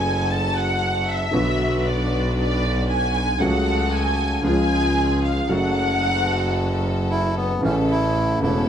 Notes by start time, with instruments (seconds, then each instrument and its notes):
Already playing: double bass F#1, grand piano F#2 C#3 F#3 A3 F#4, string section C#4 F#4 A4, violin section G#5
0.31 violin section A5
0.56 violin section F#5
1.09 violin section E5
1.31 grand piano B1 B2 D3 F#3 B3 F#4, double bass B1, string section D4 F#4 B4
1.87 violin section D5
2.38 violin section D5
2.90 violin section G#5
3.38 grand piano C#2 C#3 F#3 A3 F#4, double bass C#2, string section C#4 F#4 A4, violin section F#5
3.95 violin section G#5
4.43 grand piano C#2 C#3 F3 G#3 F4, double bass C#2, string section C#4 F4 G#4, violin section G#5
5.25 violin section F5
5.48 double bass F#1, grand piano F#2 C#3 F#3 A3 F#4, string section C#4 F#4 A4, violin section F#5
7.10 bandoneon E4
7.37 bandoneon B3
7.61 grand piano A1 A2 C#3 E3 A3, double bass A1, string section C#4 E4 A4, bandoneon C#4
7.65 grand piano E4
7.91 bandoneon E4
8.40 double bass E1, grand piano E1 E2 C#3 E3 A3, string section C#4 E4 A4, bandoneon E4
8.44 grand piano E4